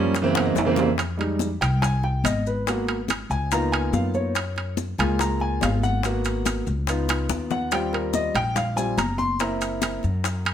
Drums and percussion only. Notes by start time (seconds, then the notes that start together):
0.14 high bongo, high conga, high timbale, maracas
0.35 high bongo, high conga, high timbale
0.55 low bongo, low conga, high timbale, maracas
0.76 low bongo, low conga, low timbale, maracas
0.98 high bongo, high conga, high timbale, maracas
1.19 high bongo, high conga, high timbale
1.39 high bongo, high conga, maracas
1.61 high bongo, high conga, low conga, high timbale, maracas
1.82 high bongo, high conga, low conga, high timbale, maracas
2.03 high bongo, high conga
2.24 high bongo, low bongo, high conga, high timbale, maracas
2.46 maracas
2.66 high bongo, high conga, high timbale, maracas
2.87 high bongo, high conga, high timbale
3.08 high bongo, high conga, high timbale, maracas
3.30 high bongo, high conga, maracas
3.51 high bongo, high conga, high timbale, maracas
3.72 high bongo, high conga, high timbale
3.93 high bongo, low bongo, high conga, maracas
4.14 high conga, maracas
4.35 high bongo, high timbale, maracas
4.56 high bongo, high conga, high timbale
4.77 high bongo, high conga, maracas
4.98 high bongo, high conga, low conga, high timbale, maracas
5.19 high bongo, high timbale, maracas
5.40 high bongo, high conga
5.61 high bongo, low bongo, high conga, high timbale, low timbale, maracas
5.83 high conga, maracas
6.03 high bongo, high timbale, maracas
6.24 high bongo, high conga, high timbale, maracas
6.46 high bongo, high conga, high timbale, maracas
6.67 high bongo, high conga, maracas
6.87 high bongo, high conga, high timbale, maracas
7.09 high bongo, high conga, high timbale, maracas
7.29 high bongo, high conga, maracas
7.50 low bongo, high conga, maracas
7.71 high bongo, high timbale, maracas
7.93 high bongo, high conga, high timbale
8.13 high bongo, high conga, maracas
8.35 high bongo, high conga, low conga, high timbale, maracas
8.56 high bongo, high conga, low conga, high timbale, maracas
8.76 high bongo, high conga, maracas
8.98 high bongo, low bongo, high conga, high timbale, maracas
9.19 high conga, maracas
9.40 high bongo, high timbale, maracas
9.61 high bongo, high conga, high timbale, maracas
9.82 high bongo, high conga, high timbale, maracas
10.03 high bongo, high conga, maracas
10.24 high bongo, high conga, high timbale, maracas
10.45 high bongo, high conga, high timbale